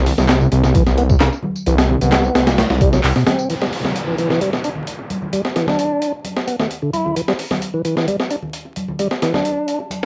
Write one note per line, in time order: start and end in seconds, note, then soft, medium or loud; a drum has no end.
0.00 0.13 C2 loud
0.06 open hi-hat medium
0.06 high bongo medium
0.06 low conga medium
0.18 0.47 C2 medium
0.18 snare medium
0.18 tambourine medium
0.18 high conga medium
0.18 low conga medium
0.29 snare loud
0.29 clap loud
0.29 closed hi-hat medium
0.29 tambourine medium
0.41 0.49 C3 medium
0.41 tambourine soft
0.52 0.81 C2 medium
0.52 0.63 C3 medium
0.52 closed hi-hat medium
0.52 high bongo medium
0.64 0.74 C3 loud
0.64 snare soft
0.64 tambourine medium
0.74 0.84 E3 loud
0.74 kick loud
0.74 closed hi-hat medium
0.74 tambourine medium
0.74 high conga medium
0.87 1.16 C2 medium
0.87 snare soft
0.87 tambourine soft
0.87 high bongo medium
0.98 1.03 B3 loud
0.98 closed hi-hat medium
1.10 kick medium
1.10 tambourine medium
1.20 1.29 C2 loud
1.20 snare loud
1.20 clap loud
1.20 closed hi-hat medium
1.20 tambourine medium
1.32 tambourine soft
1.32 high bongo medium
1.42 high conga medium
1.42 low conga medium
1.56 tambourine medium
1.66 1.96 C2 loud
1.66 1.75 E3 loud
1.66 closed hi-hat medium
1.66 tambourine medium
1.66 high bongo medium
1.78 snare loud
1.78 closed hi-hat medium
1.78 tambourine soft
1.89 2.00 C3 loud
1.89 low conga medium
2.01 2.30 C2 medium
2.01 2.46 B3 medium
2.01 closed hi-hat medium
2.01 tambourine medium
2.01 high conga medium
2.01 low conga medium
2.12 snare loud
2.12 clap loud
2.12 closed hi-hat medium
2.12 tambourine medium
2.12 high bongo medium
2.24 tambourine soft
2.35 2.64 C2 medium
2.35 snare loud
2.35 closed hi-hat medium
2.47 snare loud
2.47 closed hi-hat medium
2.47 tambourine medium
2.47 high bongo medium
2.58 snare loud
2.58 closed hi-hat medium
2.58 tambourine medium
2.58 high conga medium
2.70 2.99 C2 medium
2.70 snare medium
2.70 tambourine soft
2.81 2.90 G3 loud
2.81 kick loud
2.81 closed hi-hat medium
2.93 3.01 F#3 medium
2.93 snare soft
2.93 tambourine medium
3.04 3.12 C2 medium
3.04 clap loud
3.04 open hi-hat medium
3.04 tambourine medium
3.16 3.24 B2 medium
3.16 snare soft
3.16 tambourine soft
3.27 3.49 C4 medium
3.27 snare loud
3.27 closed hi-hat medium
3.27 high bongo medium
3.27 high conga medium
3.27 low conga medium
3.39 tambourine medium
3.50 3.55 E3 medium
3.50 closed hi-hat medium
3.50 downlifter medium
3.62 3.66 G3 loud
3.62 snare medium
3.73 open hi-hat medium
3.84 snare soft
3.84 high bongo soft
3.84 high conga medium
3.84 low conga medium
3.96 closed hi-hat medium
4.07 4.15 E3 medium
4.17 4.29 E3 medium
4.17 closed hi-hat medium
4.17 high bongo medium
4.30 4.40 E3 loud
4.30 snare soft
4.41 4.50 G3 medium
4.41 closed hi-hat medium
4.41 high conga medium
4.53 snare soft
4.64 4.69 D4 medium
4.64 closed hi-hat medium
4.64 high bongo medium
4.75 low conga medium
4.87 closed hi-hat medium
4.99 high bongo medium
5.10 closed hi-hat medium
5.10 high conga medium
5.22 low conga medium
5.33 5.42 G3 medium
5.33 closed hi-hat medium
5.45 snare soft
5.45 high bongo soft
5.56 5.67 E3 loud
5.56 snare soft
5.56 closed hi-hat medium
5.67 6.12 D4 medium
5.67 snare soft
5.67 high conga medium
5.67 low conga medium
5.79 closed hi-hat medium
5.79 high bongo medium
6.02 closed hi-hat medium
6.24 closed hi-hat medium
6.24 high bongo soft
6.24 high conga medium
6.37 snare soft
6.47 6.56 B3 medium
6.47 closed hi-hat medium
6.59 6.67 A3 medium
6.59 snare soft
6.59 high bongo medium
6.59 low conga medium
6.71 closed hi-hat medium
6.82 6.90 D3 medium
6.93 7.15 E4 medium
6.93 closed hi-hat medium
6.93 high conga medium
7.05 high bongo soft
7.05 low conga medium
7.16 7.21 E3 loud
7.16 closed hi-hat medium
7.28 7.33 G3 loud
7.28 snare medium
7.39 open hi-hat medium
7.39 high bongo medium
7.51 snare medium
7.51 high conga medium
7.51 low conga medium
7.62 closed hi-hat medium
7.74 7.82 E3 medium
7.85 7.95 E3 medium
7.85 closed hi-hat medium
7.85 high bongo soft
7.97 8.07 E3 medium
7.97 snare soft
8.08 8.16 G3 medium
8.08 closed hi-hat medium
8.08 high conga medium
8.20 snare soft
8.20 high bongo medium
8.31 8.36 D4 medium
8.31 closed hi-hat medium
8.43 low conga medium
8.53 closed hi-hat medium
8.65 high bongo medium
8.76 closed hi-hat medium
8.76 high conga medium
8.88 low conga medium
8.99 9.08 G3 medium
8.99 closed hi-hat medium
8.99 high bongo medium
9.11 snare soft
9.22 9.33 E3 loud
9.22 snare soft
9.22 closed hi-hat medium
9.34 9.79 D4 medium
9.34 snare soft
9.34 high conga medium
9.34 low conga medium
9.45 closed hi-hat medium
9.45 high bongo soft
9.68 closed hi-hat medium
9.80 high bongo medium
9.90 closed hi-hat medium
9.90 high conga medium